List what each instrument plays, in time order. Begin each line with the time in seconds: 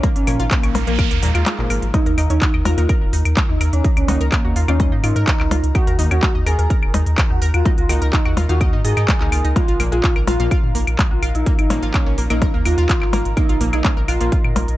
Already playing: analog synth pad D#4 A#4 F5 A#5
0.03 synth arpeggio sound A#3 A#4, kick, closed hi-hat, noise sweep, percussion blips
0.16 analog synth bass G#1, synth bell C#4, analog synth lead C#4, closed hi-hat
0.27 analog synth bass G#1, synth stab A#2 F3 A#3, synth arpeggio sound C#4 C#5, open hi-hat, claves
0.40 analog synth bass G#1, synth arpeggio sound F4 F5, closed hi-hat
0.51 analog synth lead A#3, kick, clap, closed hi-hat
0.63 analog synth bass A#1, synth arpeggio sound C#4 C#5, closed hi-hat, claves
0.75 analog synth bass A#1, synth arpeggio sound A#3 A#4, open hi-hat, percussion blips
0.87 analog synth bass A#1, synth stab A#2 F3 A#3, analog synth lead A#3, synth arpeggio sound A#3 A#4, closed hi-hat
0.99 synth arpeggio sound A#4 A#5, kick, closed hi-hat, claves
1.11 analog synth bass D#2, synth arpeggio sound A#3 A#4, closed hi-hat
1.22 analog synth bass D#2, synth stab A#2 F3 A#3, analog synth lead G#3, synth arpeggio sound A#3 A#4, open hi-hat
1.35 analog synth bass D#2, synth arpeggio sound F4 F5, closed hi-hat, claves
1.46 synth arpeggio sound F4 F5, clap, closed hi-hat, percussion blips
1.59 analog synth bass G#1, synth stab A#2 F3 A#3, clap
1.70 analog synth bass G#1, synth arpeggio sound A#3 A#4, open hi-hat, claves
1.82 analog synth bass G#1, closed hi-hat
1.94 synth bell D#4, synth arpeggio sound D#4 D#5, analog synth lead D#4, analog synth pad A#4 A#5, kick, closed hi-hat, percussion blips
2.06 analog synth bass D#2, synth arpeggio sound A#4 A#5, closed hi-hat
2.18 analog synth bass D#2, synth stab D#3 A#3 D#4, synth arpeggio sound D#4 D#5, open hi-hat, claves
2.30 analog synth bass D#2, synth arpeggio sound C#4 C#5, analog synth lead D#4, synth bell D#4, closed hi-hat
2.42 synth arpeggio sound F#4 F#5, kick, clap, closed hi-hat
2.54 analog synth bass D#2, synth arpeggio sound D#5 D#6, claves
2.65 analog synth bass D#2, synth bell F4, analog synth lead F4, synth arpeggio sound A#4 A#5, open hi-hat, percussion blips
2.78 analog synth bass D#2, synth stab D#3 A#3 D#4, synth arpeggio sound A#4 A#5, closed hi-hat
2.89 synth arpeggio sound A#4 A#5, kick, closed hi-hat, claves
3.02 analog synth bass D#1
3.13 analog synth bass D#2, synth arpeggio sound D#4 D#5, open hi-hat
3.25 analog synth bass D#2, closed hi-hat, claves
3.37 kick, clap, closed hi-hat, percussion blips
3.49 analog synth bass D#2, analog synth lead D#4, synth bell D#4
3.61 analog synth bass D#2, synth arpeggio sound A#4 A#5, open hi-hat, claves
3.73 analog synth bass D#2, analog synth lead C#4, synth bell C#4, closed hi-hat
3.84 synth arpeggio sound D#4 D#5, kick, closed hi-hat
3.97 analog synth bass C#2, analog synth lead C#4, synth bell C#4, closed hi-hat, claves
4.08 analog synth bass C#2, synth stab D#3 A#3 D#4, synth arpeggio sound F#4 F#5, open hi-hat, percussion blips
4.21 analog synth bass C#2, synth arpeggio sound A#4 A#5, closed hi-hat
4.32 analog synth lead A#3, kick, clap, closed hi-hat, claves
4.44 analog synth bass D#2, synth arpeggio sound F#4 F#5
4.56 analog synth bass D#2, synth arpeggio sound F4 F5, open hi-hat
4.68 analog synth bass D#2, synth stab D#3 A#3 D#4, analog synth lead C#4, synth bell C#4, synth arpeggio sound F4 F5, closed hi-hat, claves
4.80 synth arpeggio sound D#5 D#6, kick, closed hi-hat, percussion blips
4.92 analog synth bass G#2, synth arpeggio sound D#4 D#5
5.03 analog synth bass G#2, analog synth lead D#4, synth bell D#4, synth arpeggio sound F4 F5, open hi-hat, claves
5.16 analog synth bass G#2, synth arpeggio sound A#4 A#5, closed hi-hat
5.27 synth arpeggio sound A#4 A#5, kick, clap, closed hi-hat
5.40 analog synth bass C#2, clap, claves
5.51 analog synth bass C#2, synth arpeggio sound F4 F5, open hi-hat, percussion blips
5.63 analog synth bass C#2, closed hi-hat
5.75 synth arpeggio sound D#4 D#5, analog synth lead F#4, synth bell F#4, kick, closed hi-hat, claves
5.87 analog synth bass D#2, synth arpeggio sound A#4 A#5, closed hi-hat
5.99 analog synth bass D#2, synth stab D#3 A#3 D#4, synth arpeggio sound D#4 D#5, open hi-hat
6.11 analog synth bass D#2, synth arpeggio sound C#4 C#5, analog synth lead F#4, synth bell F#4, closed hi-hat, claves
6.23 synth arpeggio sound F#4 F#5, kick, clap, closed hi-hat, percussion blips
6.35 analog synth bass D#2, synth arpeggio sound D#5 D#6
6.46 analog synth bass D#2, analog synth lead G#4, synth bell G#4, synth arpeggio sound A#4 A#5, open hi-hat, claves
6.59 analog synth bass D#2, synth arpeggio sound A#4 A#5, closed hi-hat
6.70 synth arpeggio sound A#4 A#5, kick, closed hi-hat
6.83 analog synth bass D#1, claves
6.94 analog synth bass D#2, synth arpeggio sound D#4 D#5, open hi-hat, percussion blips
7.06 analog synth bass D#2, closed hi-hat
7.18 kick, clap, closed hi-hat, claves
7.30 analog synth bass D#2, analog synth lead F#4, synth bell F#4
7.42 analog synth bass D#2, synth arpeggio sound A#4 A#5, open hi-hat
7.54 analog synth bass D#2, synth bell F4, analog synth lead F4, closed hi-hat, claves
7.65 synth arpeggio sound D#4 D#5, kick, closed hi-hat, percussion blips
7.78 analog synth bass C#2, analog synth lead F4, synth bell F4, closed hi-hat
7.89 analog synth bass C#2, synth stab D#3 A#3 D#4, synth arpeggio sound F#4 F#5, open hi-hat, claves
8.02 analog synth bass C#2, synth arpeggio sound A#4 A#5, closed hi-hat
8.13 analog synth lead D#4, synth bell D#4, kick, clap, closed hi-hat
8.25 analog synth bass D#2, synth arpeggio sound F#4 F#5, claves
8.37 analog synth bass D#2, synth arpeggio sound F4 F5, open hi-hat, percussion blips
8.49 analog synth bass D#2, synth stab D#3 A#3 D#4, synth arpeggio sound F4 F5, synth bell F#4, analog synth lead F#4, closed hi-hat
8.61 synth arpeggio sound D#5 D#6, kick, closed hi-hat, claves
8.73 analog synth bass G#2, synth arpeggio sound D#4 D#5
8.84 analog synth bass G#2, synth bell G#4, analog synth lead G#4, synth arpeggio sound D#5 D#6, open hi-hat
8.97 analog synth bass G#2, synth arpeggio sound D#4 D#5, closed hi-hat, claves
9.08 synth arpeggio sound D#4 D#5, kick, clap, closed hi-hat, percussion blips
9.21 analog synth bass C#2, synth stab D#3 A#3 D#4, synth arpeggio sound D#5 D#6, clap
9.32 analog synth bass C#2, synth arpeggio sound F4 F5, open hi-hat, claves
9.45 analog synth bass C#2, synth arpeggio sound D#4 D#5, closed hi-hat
9.56 synth arpeggio sound A#3 A#4, analog synth pad D#4 F5 A#5, synth bell F4, analog synth lead F4, kick, closed hi-hat, percussion blips
9.68 analog synth bass A#1, synth arpeggio sound F4 F5, closed hi-hat
9.80 analog synth bass A#1, synth stab A#2 F3 A#3, synth arpeggio sound A#3 A#4, open hi-hat, claves
9.92 analog synth bass A#1, synth arpeggio sound G#3 G#4, synth bell F4, analog synth lead F4, closed hi-hat
10.04 synth arpeggio sound C#4 C#5, kick, clap, closed hi-hat
10.16 analog synth bass A#1, synth arpeggio sound A#4 A#5, claves
10.27 analog synth bass A#1, synth arpeggio sound F4 F5, analog synth lead F4, synth bell F4, open hi-hat, percussion blips
10.40 analog synth bass A#1, synth stab A#2 F3 A#3, synth arpeggio sound F4 F5, closed hi-hat
10.51 synth arpeggio sound F4 F5, kick, closed hi-hat, claves
10.64 analog synth bass A#2
10.75 analog synth bass A#1, synth arpeggio sound A#3 A#4, open hi-hat
10.87 analog synth bass A#1, closed hi-hat, claves
10.99 kick, clap, closed hi-hat, percussion blips
11.11 analog synth bass A#1, synth bell F4, analog synth lead F4
11.22 analog synth bass A#1, synth arpeggio sound F4 F5, open hi-hat, claves
11.35 analog synth bass A#1, analog synth lead D#4, synth bell D#4, closed hi-hat
11.46 synth arpeggio sound A#3 A#4, kick, closed hi-hat
11.59 analog synth bass G#1, synth bell D#4, analog synth lead D#4, closed hi-hat, claves
11.70 analog synth bass G#1, synth stab A#2 F3 A#3, synth arpeggio sound C#4 C#5, open hi-hat, percussion blips
11.83 analog synth bass G#1, synth arpeggio sound F4 F5, closed hi-hat
11.94 synth bell C#4, analog synth lead C#4, kick, clap, closed hi-hat, claves
12.06 analog synth bass A#1, synth arpeggio sound C#4 C#5
12.18 analog synth bass A#1, synth arpeggio sound A#3 A#4, open hi-hat
12.30 analog synth bass A#1, synth stab A#2 F3 A#3, synth arpeggio sound A#3 A#4, analog synth lead D#4, synth bell D#4, closed hi-hat, claves
12.42 synth arpeggio sound A#4 A#5, kick, closed hi-hat, percussion blips
12.54 analog synth bass D#2, synth arpeggio sound A#3 A#4
12.65 analog synth bass D#2, synth arpeggio sound A#3 A#4, analog synth lead F4, synth bell F4, open hi-hat, claves
12.78 analog synth bass D#2, synth arpeggio sound F4 F5, closed hi-hat
12.89 synth arpeggio sound F4 F5, kick, clap, closed hi-hat
13.02 analog synth bass G#1, clap, claves
13.13 analog synth bass G#1, synth arpeggio sound A#3 A#4, open hi-hat, percussion blips
13.25 analog synth bass G#1, closed hi-hat
13.37 synth arpeggio sound A#3 A#4, analog synth lead D#4, synth bell D#4, analog synth pad D#5, kick, closed hi-hat, claves
13.49 analog synth bass A#1, synth arpeggio sound F4 F5, closed hi-hat
13.61 analog synth bass A#1, synth stab A#2 F3 A#3, synth arpeggio sound A#3 A#4, open hi-hat
13.73 analog synth bass A#1, synth arpeggio sound G#3 G#4, analog synth lead D#4, synth bell D#4, closed hi-hat, claves
13.85 synth arpeggio sound C#4 C#5, kick, clap, closed hi-hat, percussion blips
13.97 analog synth bass A#1, synth arpeggio sound A#4 A#5
14.08 analog synth bass A#1, analog synth lead F4, synth arpeggio sound F4 F5, synth bell F4, open hi-hat, claves
14.21 analog synth bass A#1, synth stab A#2 F3 A#3, synth arpeggio sound F4 F5, closed hi-hat
14.32 synth arpeggio sound F4 F5, kick, closed hi-hat
14.45 analog synth bass A#2, claves
14.56 analog synth bass A#1, synth arpeggio sound A#3 A#4, open hi-hat, percussion blips
14.68 analog synth bass A#1, closed hi-hat